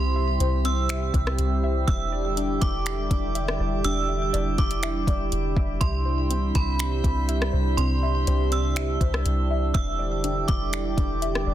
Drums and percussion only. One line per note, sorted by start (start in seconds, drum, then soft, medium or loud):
0.40 closed hi-hat medium
0.65 closed hi-hat medium
0.89 finger snap loud
0.89 closed hi-hat medium
1.14 kick medium
1.14 closed hi-hat medium
1.27 cross-stick loud
1.38 closed hi-hat medium
1.88 kick loud
1.88 closed hi-hat medium
2.37 closed hi-hat medium
2.62 kick medium
2.62 closed hi-hat medium
2.86 finger snap loud
2.86 closed hi-hat medium
3.11 kick medium
3.11 closed hi-hat medium
3.35 closed hi-hat medium
3.48 cross-stick loud
3.84 closed hi-hat medium
4.34 closed hi-hat medium
4.58 kick medium
4.58 closed hi-hat soft
4.71 closed hi-hat medium
4.83 finger snap loud
4.83 closed hi-hat medium
5.07 kick medium
5.07 closed hi-hat medium
5.32 closed hi-hat medium
5.57 kick loud
5.81 kick loud
5.81 closed hi-hat medium
6.31 closed hi-hat medium
6.55 kick medium
6.55 closed hi-hat medium
6.79 finger snap loud
6.79 closed hi-hat medium
7.04 kick medium
7.04 closed hi-hat medium
7.29 closed hi-hat medium
7.42 cross-stick loud
7.78 closed hi-hat medium
8.27 closed hi-hat medium
8.52 closed hi-hat medium
8.76 finger snap loud
8.76 closed hi-hat medium
9.01 kick medium
9.01 closed hi-hat medium
9.14 cross-stick loud
9.26 closed hi-hat medium
9.75 kick loud
9.75 closed hi-hat medium
10.24 closed hi-hat medium
10.48 kick medium
10.48 closed hi-hat medium
10.73 finger snap loud
10.73 closed hi-hat medium
10.98 kick medium
10.98 closed hi-hat medium
11.22 closed hi-hat medium
11.35 cross-stick loud